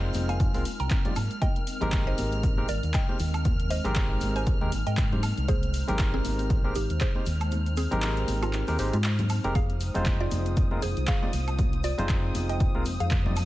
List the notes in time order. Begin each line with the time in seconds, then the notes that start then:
Already playing: G#3 C4 D#4 F4 A#4 C5 F6
0.14 F1, open hi-hat, high conga, cabasa
0.29 F5 G#5, closed hi-hat, cabasa
0.40 kick, closed hi-hat, cabasa
0.54 C2 G#3 C4 D#4 F4 A#4, open hi-hat, high conga
0.65 open hi-hat, cabasa
0.80 C2 G5 A#5, closed hi-hat, cabasa
0.90 kick, clap, closed hi-hat, cabasa
1.05 G#3 C4 D#4 F4 D5, closed hi-hat, high conga, low conga
1.16 G#2 D#4 A#4, open hi-hat, cabasa, high woodblock
1.31 closed hi-hat, cabasa
1.42 D#5 G5, kick, closed hi-hat, high conga, cabasa
1.56 closed hi-hat
1.67 open hi-hat, cabasa
1.81 G#1 G#3 C4 D#4 G4 A#4, closed hi-hat, high conga, low conga, cabasa
1.92 kick, clap, closed hi-hat, cabasa
2.07 C5 D#5
2.18 G#1, open hi-hat, high conga, cabasa
2.32 closed hi-hat, cabasa
2.43 kick, closed hi-hat, cabasa
2.57 G#3 C4 D#4 G4 A#4, high conga
2.68 G#1 A#4 D5, open hi-hat, cabasa
2.83 D#2, closed hi-hat, cabasa
2.94 D#5 G5, kick, clap, closed hi-hat, cabasa
3.08 G#3 C4 D#4 G4 C5, high conga
3.19 D#2, open hi-hat, cabasa
3.34 closed hi-hat, cabasa, high woodblock
3.45 kick, closed hi-hat, high conga, cabasa
3.60 closed hi-hat
3.70 C5 D#5, open hi-hat, cabasa
3.84 G#1 G#3 C4 D#4 G4 A#4, closed hi-hat, high conga, low conga, cabasa
3.96 kick, clap, closed hi-hat, cabasa
4.21 G#1, open hi-hat, high conga, cabasa
4.36 C5 G#5, closed hi-hat, cabasa
4.46 kick, closed hi-hat, cabasa
4.61 D#2 G#3 C4 D#4 G4 A#4, high conga
4.72 G#1, open hi-hat, cabasa
4.87 G#2 D#5 G5, closed hi-hat, cabasa
4.97 kick, clap, closed hi-hat, cabasa
5.12 G#3 C4 D#4 G4 C5, high conga, low conga
5.23 C5, open hi-hat, cabasa, high woodblock
5.37 C2, closed hi-hat, cabasa
5.48 G#4 C5, kick, closed hi-hat, high conga, cabasa
5.63 closed hi-hat
5.73 open hi-hat, cabasa
5.88 G#1 G#3 C4 D#4 G4 A#4, closed hi-hat, high conga, low conga, cabasa
5.99 kick, clap, closed hi-hat, cabasa
6.14 C4 G#4
6.25 G#1, open hi-hat, high conga, cabasa
6.39 closed hi-hat, cabasa
6.50 kick, closed hi-hat, cabasa
6.64 G#3 C4 D#4 G4 A#4, high conga
6.75 G#1 D#4 G4, open hi-hat, cabasa
6.90 D#2, closed hi-hat, cabasa
7.00 G#4 C5, kick, clap, closed hi-hat, cabasa
7.15 G#3 C4 D#4 G4 C5, high conga
7.26 D#2, open hi-hat, cabasa
7.40 closed hi-hat, cabasa, high woodblock
7.51 closed hi-hat, high conga, cabasa
7.66 closed hi-hat, cabasa
7.77 C4 G#4, open hi-hat, cabasa
7.91 G#1 G#3 C4 D#4 G4 A#4, closed hi-hat, high conga, low conga, cabasa
8.02 clap, closed hi-hat, cabasa
8.16 closed hi-hat, cabasa
8.28 G#1, open hi-hat, high conga, cabasa
8.42 G#3 F4, closed hi-hat, cabasa, high woodblock
8.53 clap, closed hi-hat, cabasa
8.67 D#2 G#3 C4 D#4 G4 A#4, open hi-hat, high conga, cabasa
8.78 G#1 G#3 C4 D#4 G4 C5, open hi-hat, cabasa
8.93 G#2 G#3 F4, closed hi-hat, cabasa
9.04 clap, closed hi-hat, cabasa
9.19 closed hi-hat, high conga, low conga, cabasa
9.29 open hi-hat, cabasa, high woodblock
9.44 F1 G#3 C4 D#4 G4 A#4, closed hi-hat, cabasa
9.55 G#3 C4 F4 G#4 F5 D#6, kick, closed hi-hat, high conga, cabasa
9.70 closed hi-hat
9.80 open hi-hat, cabasa
9.94 F1 G#3 C4 D#4 F4 C5, closed hi-hat, high conga, low conga, cabasa
10.06 kick, clap, closed hi-hat, cabasa
10.20 F4 D5
10.31 F1, open hi-hat, high conga, cabasa
10.45 closed hi-hat, cabasa
10.57 kick, closed hi-hat, cabasa
10.71 G#3 C4 D#4 F4 A#4, high conga
10.82 F1 G#4 C5, open hi-hat, cabasa
10.97 C2, closed hi-hat, cabasa
11.07 G#4 F5, kick, clap, closed hi-hat, cabasa
11.22 G#3 C4 D#4 F4 D5, high conga
11.33 C2, open hi-hat, cabasa
11.48 closed hi-hat, cabasa, high woodblock
11.59 kick, closed hi-hat, high conga, cabasa
11.73 closed hi-hat
11.84 F4 D5, open hi-hat, cabasa
11.98 F1 G#3 C4 D#4 F4 C5, closed hi-hat, high conga, low conga, cabasa
12.09 kick, clap, closed hi-hat, cabasa
12.35 F1, open hi-hat, high conga, cabasa
12.49 D#5 G5, closed hi-hat, cabasa
12.60 kick, closed hi-hat, cabasa
12.74 C2 G#3 C4 D#4 F4 A#4, high conga
12.85 F1, open hi-hat, cabasa
13.00 F2 G#4 F5, closed hi-hat, cabasa
13.11 kick, clap, closed hi-hat, cabasa
13.25 G#3 C4 D#4 F4 D5, high conga, low conga
13.36 open hi-hat, cabasa, high woodblock